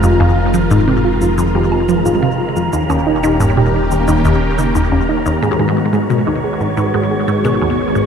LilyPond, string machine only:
\new Staff \with { instrumentName = "String machine" } { \time 4/4 \key ees \mixolydian \tempo 4 = 89 <ees aes c' f'>1 | <ees bes des' g'>1 | \key gis \minor <dis gis b fis'>1 | }